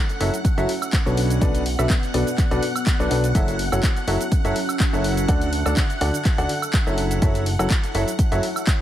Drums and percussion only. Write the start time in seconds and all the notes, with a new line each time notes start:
0.09 closed hi-hat, shaker
0.21 open hi-hat
0.34 closed hi-hat, shaker
0.45 kick, closed hi-hat, shaker
0.58 closed hi-hat, shaker
0.69 open hi-hat
0.82 high woodblock, shaker
0.93 kick, clap, closed hi-hat, shaker
1.07 shaker
1.17 open hi-hat
1.30 closed hi-hat, shaker
1.41 kick, closed hi-hat, shaker
1.55 closed hi-hat, shaker
1.66 open hi-hat
1.79 high woodblock, shaker
1.90 kick, clap, closed hi-hat, shaker
2.03 closed hi-hat, shaker
2.14 open hi-hat
2.27 closed hi-hat, shaker
2.38 kick, clap, closed hi-hat, shaker
2.51 closed hi-hat, shaker
2.63 open hi-hat
2.76 high woodblock, shaker
2.87 kick, clap, closed hi-hat, shaker
3.00 shaker
3.11 open hi-hat
3.24 closed hi-hat, shaker
3.35 kick, closed hi-hat, shaker
3.48 closed hi-hat, shaker
3.59 open hi-hat
3.72 high woodblock, shaker
3.83 kick, clap, closed hi-hat, shaker
3.96 closed hi-hat, shaker
4.08 open hi-hat
4.21 closed hi-hat, shaker
4.32 kick, closed hi-hat, shaker
4.45 closed hi-hat, shaker
4.56 open hi-hat
4.69 high woodblock, shaker
4.80 kick, clap, closed hi-hat, shaker
4.94 shaker
5.04 open hi-hat
5.17 closed hi-hat, shaker
5.28 kick, closed hi-hat, shaker
5.41 closed hi-hat, shaker
5.53 open hi-hat
5.66 high woodblock, shaker
5.77 kick, clap, closed hi-hat, shaker
5.90 closed hi-hat, shaker
6.01 open hi-hat
6.14 closed hi-hat, shaker
6.25 kick, clap, closed hi-hat, shaker
6.38 closed hi-hat, shaker
6.49 open hi-hat
6.62 high woodblock, shaker
6.73 kick, clap, closed hi-hat, shaker
6.87 shaker
6.98 open hi-hat
7.11 closed hi-hat, shaker
7.22 kick, closed hi-hat, shaker
7.35 closed hi-hat, shaker
7.46 open hi-hat
7.59 high woodblock, shaker
7.70 kick, clap, closed hi-hat, shaker
7.84 closed hi-hat, shaker
7.95 open hi-hat
8.08 closed hi-hat, shaker
8.19 kick, closed hi-hat, shaker
8.32 closed hi-hat, shaker
8.43 open hi-hat
8.56 high woodblock, shaker
8.67 kick, clap, closed hi-hat, shaker